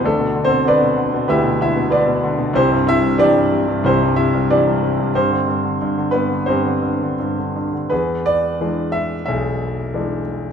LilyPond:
<<
  \new Staff \with { instrumentName = "Grand piano" } { \time 4/4 \key g \mixolydian \tempo 4 = 92 << { \tuplet 3/2 { a'4 c''8 } d''4 e''8 e''8 d''4 | c''8 e''8 d''4 c''8 e''8 d''4 | c''4 r8 b'8 c''4 r4 | b'8 d''4 e''8 e''4. r8 | } \\ { \tuplet 3/2 { <a d'>4 c'8 } <d' b'>4 <e' g' b'>8 e'8 <d' b'>4 | <c' e' g'>8 e'8 <d' g'>4 <c' e' g'>8 e'8 <d' g'>4 | <c' g'>4 r8 b8 <c' g'>4 r4 | gis'2 gis'2 | } >> }
  \new Staff \with { instrumentName = "Grand piano" } { \clef bass \time 4/4 \key g \mixolydian d,16 b,16 d16 b,16 d16 b,16 d16 b,16 d,16 b,16 d16 b,16 d16 b,16 d16 b,16 | c,16 g,16 c16 g,16 e16 g,16 c16 g,16 c,16 g,16 c16 g,16 e16 g,16 c16 g,16 | g,16 d16 g,16 d16 g,16 d16 g,16 d16 g,16 d16 g,16 d16 g,16 d16 g,16 d16 | e,4 <e gis d'>4 b,,4 <e gis d'>4 | }
>>